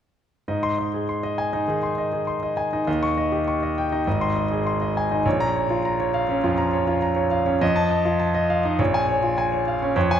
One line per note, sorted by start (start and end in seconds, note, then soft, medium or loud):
0.48 1.64 G#2 medium
0.48 0.72 D#5 medium
0.63 0.87 C6 medium
0.78 1.02 D#5 soft
0.94 1.18 G#4 soft
1.09 1.33 C6 medium
1.23 1.47 D#5 medium
1.38 1.62 G#5 medium
1.53 1.77 D#4 medium
1.53 1.77 D#5 medium
1.68 1.92 D#3 medium
1.68 1.92 G#4 medium
1.83 2.07 C6 soft
1.98 2.22 D#5 medium
2.13 2.36 G#4 soft
2.27 2.51 C6 medium
2.43 2.66 D#5 medium
2.57 2.81 G#5 medium
2.73 2.88 D#4 medium
2.73 2.86 D#5 medium
2.87 4.03 D#2 medium
2.87 3.11 D#5 medium
3.03 3.26 C#6 medium
3.18 3.41 D#5 medium
3.32 3.56 G4 soft
3.48 3.71 C#6 medium
3.63 3.86 D#5 medium
3.78 4.01 G5 medium
3.92 4.07 D#4 soft
3.92 4.06 D#5 medium
4.07 5.22 G#1 medium
4.07 4.31 D#5 medium
4.21 4.45 C6 medium
4.36 4.60 D#5 medium
4.52 4.75 G#4 medium
4.66 4.90 C6 medium
4.82 5.05 D#5 medium
4.97 5.20 G#5 medium
5.11 5.26 D#4 soft
5.11 5.26 D#5 medium
5.26 6.41 A#1 medium
5.26 5.49 C#5 medium
5.40 5.64 A#5 medium
5.56 5.79 C#5 medium
5.70 5.94 F4 medium
5.85 6.09 A#5 medium
6.00 6.23 C#5 medium
6.14 6.38 F5 medium
6.29 6.53 C#4 medium
6.29 6.53 C#5 medium
6.44 6.68 F2 medium
6.44 6.68 F4 medium
6.58 6.82 A#5 medium
6.73 6.97 C#5 medium
6.87 7.11 F4 medium
7.02 7.26 A#5 medium
7.16 7.41 C#5 medium
7.31 7.55 F5 medium
7.46 7.61 C#4 medium
7.46 7.61 C#5 medium
7.61 8.75 F2 medium
7.61 7.85 D#5 medium
7.76 8.00 A5 medium
7.91 8.14 D#5 medium
8.05 8.29 F4 medium
8.20 8.44 A5 medium
8.35 8.58 D#5 medium
8.50 8.73 F5 medium
8.65 8.80 D#4 medium
8.65 8.79 D#5 medium
8.79 9.92 A#1 medium
8.79 9.02 C#5 medium
8.94 9.17 G#5 medium
9.09 9.32 C#5 medium
9.23 9.46 F4 medium
9.38 9.61 G#5 medium
9.52 9.75 C#5 medium
9.68 9.90 F5 medium
9.82 9.96 C#4 medium
9.82 9.94 C#5 medium
9.96 10.20 F2 medium
9.96 10.19 C#5 medium
10.11 10.20 G#5 medium